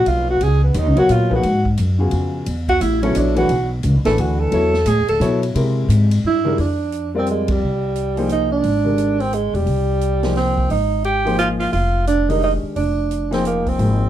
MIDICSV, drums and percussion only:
0, 0, Header, 1, 2, 480
1, 0, Start_track
1, 0, Tempo, 343249
1, 565, Time_signature, 3, 2, 24, 8
1, 19709, End_track
2, 0, Start_track
2, 0, Title_t, "Drums"
2, 83, Note_on_c, 9, 51, 57
2, 223, Note_off_c, 9, 51, 0
2, 568, Note_on_c, 9, 51, 61
2, 707, Note_off_c, 9, 51, 0
2, 1038, Note_on_c, 9, 44, 56
2, 1038, Note_on_c, 9, 51, 69
2, 1177, Note_off_c, 9, 44, 0
2, 1177, Note_off_c, 9, 51, 0
2, 1351, Note_on_c, 9, 51, 49
2, 1491, Note_off_c, 9, 51, 0
2, 1524, Note_on_c, 9, 44, 60
2, 1524, Note_on_c, 9, 51, 61
2, 1664, Note_off_c, 9, 44, 0
2, 1664, Note_off_c, 9, 51, 0
2, 1835, Note_on_c, 9, 36, 44
2, 1975, Note_off_c, 9, 36, 0
2, 2003, Note_on_c, 9, 51, 60
2, 2143, Note_off_c, 9, 51, 0
2, 2312, Note_on_c, 9, 36, 46
2, 2452, Note_off_c, 9, 36, 0
2, 2482, Note_on_c, 9, 44, 48
2, 2482, Note_on_c, 9, 51, 60
2, 2621, Note_off_c, 9, 44, 0
2, 2621, Note_off_c, 9, 51, 0
2, 2950, Note_on_c, 9, 51, 59
2, 3090, Note_off_c, 9, 51, 0
2, 3442, Note_on_c, 9, 51, 72
2, 3582, Note_off_c, 9, 51, 0
2, 3754, Note_on_c, 9, 36, 47
2, 3756, Note_on_c, 9, 51, 55
2, 3894, Note_off_c, 9, 36, 0
2, 3896, Note_off_c, 9, 51, 0
2, 3929, Note_on_c, 9, 44, 57
2, 3929, Note_on_c, 9, 51, 67
2, 4068, Note_off_c, 9, 44, 0
2, 4068, Note_off_c, 9, 51, 0
2, 4233, Note_on_c, 9, 51, 50
2, 4373, Note_off_c, 9, 51, 0
2, 4401, Note_on_c, 9, 44, 60
2, 4401, Note_on_c, 9, 51, 67
2, 4541, Note_off_c, 9, 44, 0
2, 4541, Note_off_c, 9, 51, 0
2, 4704, Note_on_c, 9, 51, 50
2, 4844, Note_off_c, 9, 51, 0
2, 4879, Note_on_c, 9, 51, 61
2, 5018, Note_off_c, 9, 51, 0
2, 5355, Note_on_c, 9, 44, 55
2, 5355, Note_on_c, 9, 51, 65
2, 5495, Note_off_c, 9, 44, 0
2, 5495, Note_off_c, 9, 51, 0
2, 5664, Note_on_c, 9, 51, 50
2, 5668, Note_on_c, 9, 38, 59
2, 5804, Note_off_c, 9, 51, 0
2, 5808, Note_off_c, 9, 38, 0
2, 5844, Note_on_c, 9, 51, 60
2, 5984, Note_off_c, 9, 51, 0
2, 6317, Note_on_c, 9, 51, 62
2, 6457, Note_off_c, 9, 51, 0
2, 6625, Note_on_c, 9, 38, 37
2, 6765, Note_off_c, 9, 38, 0
2, 6791, Note_on_c, 9, 44, 54
2, 6791, Note_on_c, 9, 51, 79
2, 6931, Note_off_c, 9, 44, 0
2, 6931, Note_off_c, 9, 51, 0
2, 7107, Note_on_c, 9, 51, 54
2, 7247, Note_off_c, 9, 51, 0
2, 7286, Note_on_c, 9, 44, 55
2, 7286, Note_on_c, 9, 51, 64
2, 7426, Note_off_c, 9, 44, 0
2, 7426, Note_off_c, 9, 51, 0
2, 7591, Note_on_c, 9, 51, 55
2, 7731, Note_off_c, 9, 51, 0
2, 7766, Note_on_c, 9, 51, 76
2, 7906, Note_off_c, 9, 51, 0
2, 8248, Note_on_c, 9, 44, 60
2, 8248, Note_on_c, 9, 51, 75
2, 8387, Note_off_c, 9, 44, 0
2, 8387, Note_off_c, 9, 51, 0
2, 8545, Note_on_c, 9, 51, 75
2, 8685, Note_off_c, 9, 51, 0
2, 9200, Note_on_c, 9, 46, 41
2, 9339, Note_off_c, 9, 46, 0
2, 9677, Note_on_c, 9, 42, 50
2, 9817, Note_off_c, 9, 42, 0
2, 10158, Note_on_c, 9, 42, 43
2, 10298, Note_off_c, 9, 42, 0
2, 10459, Note_on_c, 9, 51, 67
2, 10469, Note_on_c, 9, 36, 77
2, 10598, Note_off_c, 9, 51, 0
2, 10608, Note_off_c, 9, 36, 0
2, 11123, Note_on_c, 9, 42, 49
2, 11263, Note_off_c, 9, 42, 0
2, 11425, Note_on_c, 9, 46, 37
2, 11565, Note_off_c, 9, 46, 0
2, 11596, Note_on_c, 9, 42, 49
2, 11736, Note_off_c, 9, 42, 0
2, 12074, Note_on_c, 9, 46, 45
2, 12214, Note_off_c, 9, 46, 0
2, 12554, Note_on_c, 9, 42, 50
2, 12694, Note_off_c, 9, 42, 0
2, 12867, Note_on_c, 9, 46, 38
2, 13006, Note_off_c, 9, 46, 0
2, 13042, Note_on_c, 9, 42, 45
2, 13182, Note_off_c, 9, 42, 0
2, 13348, Note_on_c, 9, 46, 35
2, 13488, Note_off_c, 9, 46, 0
2, 13517, Note_on_c, 9, 46, 45
2, 13657, Note_off_c, 9, 46, 0
2, 14002, Note_on_c, 9, 42, 47
2, 14142, Note_off_c, 9, 42, 0
2, 14305, Note_on_c, 9, 46, 39
2, 14309, Note_on_c, 9, 38, 54
2, 14445, Note_off_c, 9, 46, 0
2, 14449, Note_off_c, 9, 38, 0
2, 14483, Note_on_c, 9, 46, 38
2, 14487, Note_on_c, 9, 38, 28
2, 14623, Note_off_c, 9, 46, 0
2, 14627, Note_off_c, 9, 38, 0
2, 14790, Note_on_c, 9, 36, 51
2, 14929, Note_off_c, 9, 36, 0
2, 14961, Note_on_c, 9, 46, 45
2, 15101, Note_off_c, 9, 46, 0
2, 15442, Note_on_c, 9, 42, 49
2, 15582, Note_off_c, 9, 42, 0
2, 15753, Note_on_c, 9, 46, 39
2, 15893, Note_off_c, 9, 46, 0
2, 15920, Note_on_c, 9, 42, 48
2, 16060, Note_off_c, 9, 42, 0
2, 16224, Note_on_c, 9, 46, 37
2, 16364, Note_off_c, 9, 46, 0
2, 16400, Note_on_c, 9, 46, 47
2, 16540, Note_off_c, 9, 46, 0
2, 16881, Note_on_c, 9, 42, 54
2, 17021, Note_off_c, 9, 42, 0
2, 17193, Note_on_c, 9, 46, 42
2, 17333, Note_off_c, 9, 46, 0
2, 17369, Note_on_c, 9, 46, 38
2, 17509, Note_off_c, 9, 46, 0
2, 17842, Note_on_c, 9, 46, 44
2, 17981, Note_off_c, 9, 46, 0
2, 18327, Note_on_c, 9, 42, 49
2, 18467, Note_off_c, 9, 42, 0
2, 18630, Note_on_c, 9, 46, 39
2, 18634, Note_on_c, 9, 38, 33
2, 18770, Note_off_c, 9, 46, 0
2, 18774, Note_off_c, 9, 38, 0
2, 18808, Note_on_c, 9, 42, 45
2, 18948, Note_off_c, 9, 42, 0
2, 19108, Note_on_c, 9, 46, 35
2, 19110, Note_on_c, 9, 36, 40
2, 19248, Note_off_c, 9, 46, 0
2, 19250, Note_off_c, 9, 36, 0
2, 19284, Note_on_c, 9, 46, 44
2, 19424, Note_off_c, 9, 46, 0
2, 19709, End_track
0, 0, End_of_file